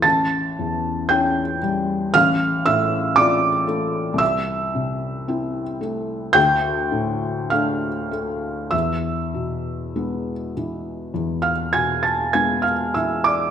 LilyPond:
<<
  \new Staff \with { instrumentName = "Felt piano" } { \time 4/4 \key a \minor \tempo 4 = 53 <a'' a'''>4 <g'' g'''>4 <f'' f'''>8 <e'' e'''>8 <d'' d'''>4 | <e'' e'''>2 <g'' g'''>4 <f'' f'''>4 | <e'' e'''>2~ <e'' e'''>16 <f'' f'''>16 <gis'' gis'''>16 <a'' a'''>16 <gis'' gis'''>16 <f'' f'''>16 <e'' e'''>16 <d'' d'''>16 | }
  \new Staff \with { instrumentName = "Felt piano" } { \clef bass \time 4/4 \key a \minor a,,8 e,8 <cis' e'>8 g8 a,,8 a,8 <c' f'>8 a8 | c,8 c8 <c' e'>8 a8 d,8 a,8 <a d'>8 a8 | e,8 b,8 <gis b>8 e8 e,8 b,8 <gis b>8 e8 | }
>>